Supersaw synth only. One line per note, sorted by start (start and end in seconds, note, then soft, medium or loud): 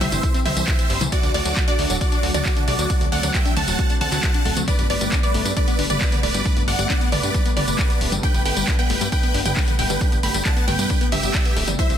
0.01 0.40 C5 medium
0.01 0.40 E5 medium
0.46 1.03 C5 medium
0.46 1.03 E5 loud
1.12 1.32 F#4 medium
1.12 1.32 D5 loud
1.34 1.64 F#4 medium
1.34 1.64 D5 loud
1.68 1.97 F#4 medium
1.68 1.97 D5 loud
2.01 2.30 F#4 medium
2.01 2.30 D5 loud
2.34 2.63 F#4 medium
2.34 2.63 D5 loud
2.68 3.07 F#4 medium
2.68 3.07 D5 loud
3.12 3.32 D5 medium
3.12 3.32 F#5 medium
3.34 3.54 E5 medium
3.34 3.54 G5 medium
3.57 3.95 F#5 medium
3.57 3.95 A5 loud
4.01 4.59 F#5 medium
4.01 4.59 A5 medium
4.68 4.87 B4 medium
4.68 4.87 D5 loud
4.90 5.19 B4 medium
4.90 5.19 D5 medium
5.23 5.52 B4 medium
5.23 5.52 D5 loud
5.57 5.86 B4 medium
5.57 5.86 D5 medium
5.90 6.19 B4 medium
5.90 6.19 D5 loud
6.23 6.62 B4 medium
6.23 6.62 D5 medium
6.68 6.87 D5 medium
6.68 6.87 F#5 medium
6.90 7.09 D5 medium
7.12 7.51 B4 medium
7.12 7.51 D5 loud
7.57 8.14 B4 medium
7.57 8.14 D5 loud
8.23 8.43 B4 medium
8.23 8.43 G5 loud
8.45 8.75 B4 medium
8.45 8.75 G5 loud
8.79 9.08 B4 medium
8.79 9.08 G5 loud
9.12 9.41 B4 medium
9.12 9.41 G5 loud
9.45 9.75 B4 medium
9.45 9.75 G5 loud
9.79 10.18 B4 medium
9.79 10.18 G5 loud
10.23 10.43 G5 medium
10.23 10.43 B5 medium
10.46 10.65 F#5 medium
10.46 10.65 A5 medium
10.68 11.06 B4 medium
10.68 11.06 G5 loud
11.12 11.70 G4 medium
11.12 11.70 E5 loud
11.79 11.98 C5 medium
11.79 11.98 E5 medium